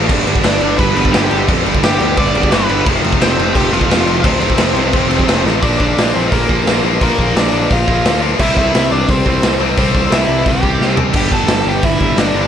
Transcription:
0.09 picked electric bass G1, distorted electric guitar G2 D3 G3 B3 D4, kick, crash
0.26 picked electric bass G1, distorted electric guitar G2 D3 G3, crash
0.36 kick
0.44 picked electric bass G1, distorted electric guitar G2 D3 G3, lead electric guitar D4 D5, snare, crash
0.61 picked electric bass G1, distorted electric guitar G2 D3 G3, crash
0.78 picked electric bass G1, distorted electric guitar G2 D3 G3, lead electric guitar B4 B5, kick, crash
0.95 picked electric bass G1, distorted electric guitar G2 D3 G3, crash
1.05 kick
1.11 picked electric bass G1, distorted electric guitar G2 D3 G3, lead electric guitar G4 G5, snare, crash
1.31 picked electric bass G1, distorted electric guitar G2 D3 G3, crash
1.48 picked electric bass F2, distorted electric guitar G2 D3 G3 B3 D4, kick, crash
1.66 picked electric bass G1, distorted electric guitar G2 D3 G3, crash
1.75 kick
1.83 picked electric bass G1, distorted electric guitar G2 D3 G3, lead electric guitar G4 G5, snare, crash
2.00 picked electric bass D2, distorted electric guitar G2 D3 G3, crash
2.17 picked electric bass G1, distorted electric guitar G2 D3 G3, lead electric guitar D5 D6, kick, crash
2.35 picked electric bass G1, distorted electric guitar G2 D3 G3, crash
2.43 kick
2.52 picked electric bass G1, distorted electric guitar G2 D3 G3, lead electric guitar B4 B5, snare, crash
2.68 picked electric bass G1, distorted electric guitar G2 D3 G3, crash
2.86 picked electric bass F1, distorted electric guitar F2 C3 F3 A3 C4, kick, crash
3.03 picked electric bass F1, distorted electric guitar F2 C3 F3, crash
3.13 kick
3.21 picked electric bass F1, distorted electric guitar F2 C3 F3, lead electric guitar C4 C5, snare, crash
3.37 picked electric bass F1, distorted electric guitar F2 C3 F3, crash
3.55 picked electric bass F1, distorted electric guitar F2 C3 F3, lead electric guitar G4 G5, kick, crash
3.71 picked electric bass F1, distorted electric guitar F2 C3 F3, lead electric guitar F4 F5, crash
3.81 kick
3.88 picked electric bass F1, distorted electric guitar F2 C3 F3, snare, crash
4.06 picked electric bass F1, distorted electric guitar F2 C3 F3, crash
4.24 picked electric bass D2, distorted electric guitar F2 C3 F3 A3 C4, lead electric guitar C4 C5, kick, crash
4.41 picked electric bass F1, distorted electric guitar F2 C3 F3, crash
4.50 kick
4.58 picked electric bass F1, distorted electric guitar F2 C3 F3, snare, crash
4.74 picked electric bass C2, distorted electric guitar F2 C3 F3, crash
4.93 picked electric bass F1, distorted electric guitar F2 C3 F3, kick, crash
5.10 picked electric bass F1, distorted electric guitar F2 C3 F3, crash
5.19 kick
5.26 picked electric bass F1, distorted electric guitar F2 C3 F3, snare, crash
5.45 picked electric bass A1, distorted electric guitar F2 C3 F3, snare
5.61 picked electric bass A#1, distorted electric guitar A#2 F3 A#3, lead electric guitar D4 D5, kick, open hi-hat
5.79 picked electric bass A#1, lead electric guitar D4 D5, kick
5.98 picked electric bass A#1, snare, open hi-hat
6.14 picked electric bass A#1, lead electric guitar C4 C5
6.32 picked electric bass A#1, lead electric guitar A#3 A#4, kick, open hi-hat
6.48 picked electric bass A#1, distorted electric guitar A#2 F3 A#3, kick
6.65 picked electric bass A#1, distorted electric guitar A#2 F3 A#3, snare, open hi-hat
6.83 picked electric bass A#1, distorted electric guitar A#2 F3 A#3
7.01 picked electric bass A#1, distorted electric guitar A#2 F3 A#3, lead electric guitar A#3 A#4, kick, open hi-hat
7.19 picked electric bass A#1, kick
7.35 picked electric bass A#1, lead electric guitar D4 D5, snare, open hi-hat
7.53 picked electric bass A#1
7.71 picked electric bass A#1, lead electric guitar F4 F5, kick, open hi-hat
7.86 picked electric bass A#1, distorted electric guitar A#2 F3 A#3, kick
8.04 picked electric bass D2, distorted electric guitar A#2 F3 A#3, snare, open hi-hat
8.21 distorted electric guitar A#2 F3 A#3
8.39 picked electric bass C2, distorted electric guitar C3 G3 C4, lead electric guitar E4 E5, kick, crash
8.57 picked electric bass C2, lead electric guitar E4 E5, kick
8.75 picked electric bass C2, snare, open hi-hat
8.91 picked electric bass C2, lead electric guitar D4 D5
9.08 picked electric bass C2, lead electric guitar C4 C5, kick, open hi-hat
9.25 picked electric bass C2, distorted electric guitar C3 G3 C4, kick
9.42 picked electric bass C2, distorted electric guitar C3 G3 C4, snare, open hi-hat
9.59 picked electric bass C2, distorted electric guitar C3 G3 C4
9.77 picked electric bass C2, distorted electric guitar C3 G3 C4, lead electric guitar C4 C5, kick, open hi-hat
9.95 picked electric bass C2, kick
10.11 picked electric bass C2, lead electric guitar E4 E5, snare, open hi-hat
10.28 picked electric bass C2
10.46 picked electric bass C2, lead electric guitar G4 G5, kick, open hi-hat
10.62 picked electric bass C2, distorted electric guitar C3 G3 C4, kick
10.79 picked electric bass C2, distorted electric guitar C3 G3 C4, snare
10.96 distorted electric guitar C3 G3 C4, floor tom
11.12 picked electric bass G1, distorted electric guitar G2 D3 G3, kick, open hi-hat, crash
11.16 lead electric guitar G4 G5
11.31 picked electric bass G1, lead electric guitar A4 A5, kick
11.47 picked electric bass G1, snare, open hi-hat
11.65 picked electric bass G1, lead electric guitar G4 G5
11.83 picked electric bass G1, lead electric guitar E4 E5, kick, open hi-hat
11.99 picked electric bass G1, distorted electric guitar G2 D3 G3, kick
12.16 picked electric bass G1, distorted electric guitar G2 D3 G3, lead electric guitar D4 D5, snare, open hi-hat
12.34 picked electric bass G1, distorted electric guitar D3 G3
12.38 distorted electric guitar G2

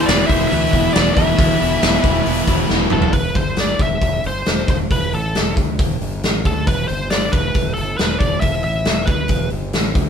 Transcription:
Already playing: distorted electric guitar E3 G3 B3 E4
0.01 lead electric guitar A4 C5
0.06 fingered electric bass E1, overdriven electric guitar E2 B2 E3, lead electric guitar B4 D5, snare, open hi-hat
0.27 fingered electric bass E1, overdriven electric guitar E2 B2, lead electric guitar C5 E5, kick, open hi-hat
0.31 overdriven electric guitar E3
0.48 fingered electric bass D2, overdriven electric guitar E2, lead electric guitar B4 E5, open hi-hat
0.52 overdriven electric guitar B2 E3
0.73 fingered electric bass E1, overdriven electric guitar E2 B2 E3, kick, open hi-hat
0.93 fingered electric bass E1, overdriven electric guitar E2 B2 E3, lead electric guitar B4 D5, snare, open hi-hat
1.15 fingered electric bass E1, overdriven electric guitar E2 B2, lead electric guitar B4 E5, kick, open hi-hat
1.19 overdriven electric guitar E3
1.37 fingered electric bass E1, overdriven electric guitar E2 B2 E3, distorted electric guitar E3 G3 B3 E4, kick, open hi-hat
1.61 fingered electric bass E1, overdriven electric guitar E2 B2 E3, open hi-hat
1.82 fingered electric bass E1, overdriven electric guitar E2 B2 E3, snare, open hi-hat
2.04 fingered electric bass E1, overdriven electric guitar E2 B2 E3, kick, open hi-hat
2.25 fingered electric bass E1, overdriven electric guitar E2 B2 E3, open hi-hat
2.47 fingered electric bass E1, overdriven electric guitar E2 B2 E3, kick, open hi-hat
2.70 fingered electric bass E1, overdriven electric guitar E2 B2 E3, snare
2.90 fingered electric bass E1, overdriven electric guitar E2 B2 E3, lead electric guitar A4, mid tom
3.02 floor tom
3.13 fingered electric bass E1, lead electric guitar B4, kick, open hi-hat
3.35 fingered electric bass G1, lead electric guitar C5, kick, open hi-hat
3.56 lead electric guitar D5, snare, open hi-hat
3.79 fingered electric bass E1, lead electric guitar E5, kick, open hi-hat
4.01 fingered electric bass E1, kick, open hi-hat
4.24 fingered electric bass G1, lead electric guitar C5, open hi-hat
4.46 fingered electric bass E1, snare, open hi-hat
4.68 fingered electric bass E1, lead electric guitar C5, kick, open hi-hat
4.90 fingered electric bass E1, lead electric guitar B4, kick, open hi-hat
5.13 fingered electric bass A1, lead electric guitar A4, open hi-hat
5.35 fingered electric bass E1, snare, open hi-hat
5.57 fingered electric bass D2, kick, open hi-hat
5.79 fingered electric bass E1, kick, open hi-hat
6.01 fingered electric bass G1, open hi-hat
6.23 fingered electric bass A1, snare, open hi-hat
6.45 fingered electric bass D2, lead electric guitar A4, kick, open hi-hat
6.67 fingered electric bass E1, lead electric guitar B4, kick, open hi-hat
6.88 fingered electric bass G1, lead electric guitar C5, open hi-hat
7.10 lead electric guitar D5, snare, open hi-hat
7.32 fingered electric bass E1, lead electric guitar B4, kick, open hi-hat
7.54 fingered electric bass E1, kick, open hi-hat
7.74 fingered electric bass G1, lead electric guitar A4, open hi-hat
7.98 fingered electric bass E1, lead electric guitar B4, snare, open hi-hat
8.18 fingered electric bass E1, lead electric guitar D5, kick, open hi-hat
8.40 fingered electric bass E1, lead electric guitar E5, kick, open hi-hat
8.63 fingered electric bass A1, lead electric guitar E5, open hi-hat
8.85 fingered electric bass E1, snare, open hi-hat
9.06 fingered electric bass D2, lead electric guitar B4, kick, open hi-hat
9.28 fingered electric bass E1, kick, open hi-hat
9.50 fingered electric bass G1, open hi-hat
9.73 fingered electric bass A1, snare, open hi-hat
9.95 fingered electric bass D2, kick, open hi-hat

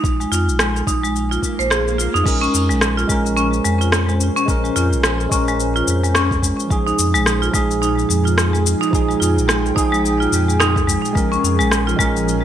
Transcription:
Already playing: marimba D#4
0.04 sub bass A#1, kick, shaker
0.20 marimba G#3, shaker
0.32 sub bass F2, marimba F4, shaker
0.48 sub bass A#1, shaker
0.59 marimba G#3, cross-stick, shaker
0.76 shaker
0.87 sub bass A#1, marimba D#4, kick, shaker
1.03 marimba G#3, shaker
1.15 swell, shaker
1.31 marimba F4, shaker
1.43 kick, shaker
1.59 sub bass A#1, marimba C5, shaker
1.70 marimba G#4, cross-stick, shaker
1.88 shaker
1.98 marimba F4, shaker
2.14 sub bass F2, marimba D#4, shaker
2.24 sub bass A#1, ambient pad A#2, tine electric piano G#3 C#4, marimba G#3, kick, crash, shaker
2.28 tine electric piano A#4
2.41 marimba C#4, shaker
2.47 ambient pad F3
2.54 sub bass F2, shaker
2.69 sub bass A#1, marimba G#3, ambient pad C#4 G#4 C5, shaker
2.81 cross-stick, shaker
2.97 marimba F4, shaker
3.08 sub bass A#1, tine electric piano G#3 C#4 A#4, marimba G#3, kick, shaker
3.26 shaker
3.37 marimba C#4, shaker
3.53 shaker
3.65 sub bass F2, marimba G#3, shaker
3.81 marimba F4, shaker
3.92 cross-stick, shaker
4.09 marimba G#3, shaker
4.21 shaker
4.36 marimba C#4, shaker
4.46 sub bass A#1, tine electric piano G#3 C#4, kick, shaker
4.50 tine electric piano A#4
4.64 marimba G#3, shaker
4.76 sub bass F2, marimba F4, shaker
4.92 sub bass A#1, shaker
5.03 marimba G#3, cross-stick, shaker
5.20 shaker
5.29 sub bass A#1, tine electric piano G#3 C#4 A#4, marimba C#4, kick, shaker
5.48 marimba G#3, shaker
5.60 shaker
5.76 marimba F4, shaker
5.87 sub bass F2, shaker
6.03 marimba G#3, shaker
6.14 marimba C#4, cross-stick, shaker
6.31 kick, shaker
6.43 marimba G#3, kick, shaker
6.60 shaker
6.68 sub bass A#1, tine electric piano F3 D#4 G#4, marimba G#3, kick, shaker
6.87 marimba D#4, shaker
6.99 sub bass F2, shaker
7.09 ambient pad D#4
7.14 sub bass A#1, marimba G#3, shaker
7.26 cross-stick, shaker
7.42 marimba F4, shaker
7.51 sub bass A#1, tine electric piano F3 D#4 G#4, marimba G#3, kick, shaker
7.71 shaker
7.82 marimba D#4, shaker
7.99 shaker
8.09 sub bass F2, marimba G#3, shaker
8.25 marimba F4, shaker
8.38 cross-stick, shaker
8.53 marimba G#3, ambient pad G5, shaker
8.66 shaker
8.81 marimba D#4, shaker
8.91 sub bass A#1, tine electric piano F3 D#4 G#4, kick, shaker
9.09 marimba G#3, shaker
9.20 sub bass F2, marimba F4, shaker
9.37 sub bass A#1, shaker
9.48 marimba G#3, cross-stick, shaker
9.66 shaker
9.75 sub bass A#1, tine electric piano F3 D#4 G#4, marimba D#4, kick, shaker
9.92 marimba G#3, shaker
10.06 shaker
10.20 marimba F4, shaker
10.32 sub bass F2, shaker
10.48 marimba G#3, shaker
10.60 marimba D#4, cross-stick, shaker
10.76 kick, shaker
10.88 marimba G#3, kick, shaker
11.05 shaker
11.13 sub bass A#1, tine electric piano G#3 C#4, marimba G#3, kick, shaker
11.17 tine electric piano A#4
11.32 marimba C#4, shaker
11.44 sub bass F2, shaker
11.59 sub bass A#1, marimba G#3, shaker
11.71 cross-stick, shaker
11.87 marimba F4, shaker
11.97 sub bass A#1, tine electric piano G#3 C#4 A#4, marimba G#3, ambient pad C#4, kick, shaker
12.16 shaker
12.28 shaker

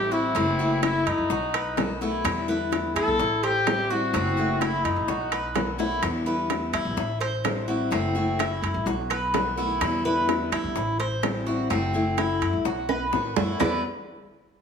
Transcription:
Already playing: upright bass A1, steel-string acoustic guitar E3 G3 C4 E4, trumpet G4, cuban tres C5
0.11 steel-string acoustic guitar G3 C4 E4, trumpet E4, cuban tres F#4
0.35 upright bass F#1, steel-string acoustic guitar C3 E3 A3 E4 F#4, cuban tres C4, high bongo, high timbale
0.59 steel-string acoustic guitar E3 A3 E4 F#4
0.83 cuban tres E4, trumpet E4, high bongo, high timbale, low timbale, claves
1.06 upright bass F#2, trumpet D#4, high bongo, high timbale
1.18 upright bass F#2
1.30 upright bass B1, cuban tres F#4, muted steel-string acoustic guitar stroke, high bongo
1.54 cuban tres B4, high bongo, high timbale, claves
1.77 steel-string acoustic guitar D#3 A3 B3 F#4, high bongo, low bongo, high timbale, low timbale
2.01 steel-string acoustic guitar D#3 A3 B3 F#4, cuban tres E4, high bongo
2.24 upright bass E2, steel-string acoustic guitar B2 D3 G3 B3 E4, high bongo, high timbale, claves
2.48 steel-string acoustic guitar D3 G3 B3 E4, cuban tres B4
2.72 high bongo, high timbale, low timbale
2.95 upright bass E3, cuban tres E4, trumpet A4, high timbale, claves
3.07 upright bass B1
3.19 upright bass A1, muted steel-string acoustic guitar stroke, high bongo
3.43 trumpet G4, cuban tres C5, high timbale
3.66 steel-string acoustic guitar E3 G3 C4 E4, high bongo, low bongo, high timbale, low timbale, claves
3.90 steel-string acoustic guitar G3 C4 E4, trumpet F#4, cuban tres F#4
4.13 upright bass F#1, steel-string acoustic guitar C3 E3 A3 E4 F#4, cuban tres C4, high bongo, high timbale
4.37 steel-string acoustic guitar E3 A3 E4 F#4
4.60 trumpet E4, cuban tres E4, high bongo, high timbale, low timbale, claves
4.84 upright bass F#2, trumpet D#4, high bongo, high timbale
4.96 upright bass A1
5.08 upright bass B1, cuban tres F#4, muted steel-string acoustic guitar stroke, high bongo
5.32 cuban tres B4, high bongo, high timbale, claves
5.55 steel-string acoustic guitar D#3 A3 B3 F#4, high bongo, low bongo, high timbale, low timbale
5.78 steel-string acoustic guitar D#3 A3 B3 F#4, cuban tres E4, high bongo
6.02 upright bass E2, steel-string acoustic guitar B2 D3 G3 B3 E4, high bongo, high timbale, claves
6.26 steel-string acoustic guitar D3 G3 B3 E4, cuban tres B4
6.50 high bongo, high timbale, low timbale
6.73 upright bass E3, cuban tres E4, high timbale, claves
6.85 upright bass A#1
6.97 upright bass A1, muted steel-string acoustic guitar stroke, high bongo
7.21 cuban tres C5, high timbale
7.44 steel-string acoustic guitar E3 G3 C4 E4, high bongo, low bongo, high timbale, low timbale, claves
7.68 steel-string acoustic guitar G3 C4 E4, cuban tres F#4
7.91 upright bass F#1, steel-string acoustic guitar C3 E3 A3 E4 F#4, cuban tres C4, high bongo, high timbale
8.15 steel-string acoustic guitar E3 A3 E4 F#4
8.39 cuban tres E4, high bongo, high timbale, low timbale, claves
8.62 upright bass F#2, high bongo, high timbale
8.74 upright bass A1
8.86 upright bass B1, cuban tres F#4, muted steel-string acoustic guitar stroke, high bongo
9.10 cuban tres B4, high bongo, high timbale, claves
9.34 steel-string acoustic guitar D#3 A3 B3 F#4, high bongo, low bongo, high timbale, low timbale
9.57 steel-string acoustic guitar D#3 A3 B3 F#4, cuban tres E4, high bongo
9.81 upright bass E2, steel-string acoustic guitar B2 D3 G3 B3 E4, high bongo, high timbale, claves
10.05 steel-string acoustic guitar D3 G3 B3 E4, cuban tres B4
10.29 high bongo, high timbale, low timbale
10.52 upright bass E3, cuban tres E4, high timbale, claves
10.64 upright bass B1
10.75 upright bass A1, muted steel-string acoustic guitar stroke, high bongo
11.00 cuban tres C5, high timbale
11.23 steel-string acoustic guitar E3 G3 C4 E4, high bongo, low bongo, high timbale, low timbale, claves
11.46 steel-string acoustic guitar G3 C4 E4, cuban tres F#4
11.70 upright bass F#1, steel-string acoustic guitar C3 E3 A3 E4 F#4, cuban tres C4, high bongo, high timbale
11.93 steel-string acoustic guitar E3 A3 E4 F#4
12.18 cuban tres E4, high bongo, high timbale, low timbale, claves
12.41 upright bass F#2, high bongo, high timbale
12.53 upright bass A1
12.65 upright bass B1, cuban tres F#4, muted steel-string acoustic guitar stroke, high bongo
12.89 cuban tres B4, high bongo, high timbale, claves
13.12 upright bass A2, steel-string acoustic guitar D#3 A3 B3 F#4, high bongo, low bongo
13.36 upright bass F#2, steel-string acoustic guitar D#3 A3 B3 F#4, cuban tres E4, high bongo, low timbale
13.60 steel-string acoustic guitar E2 B2 D3 G3 B3 E4, upright bass E2, cuban tres E4 B4 D5, low bongo, low timbale, claves

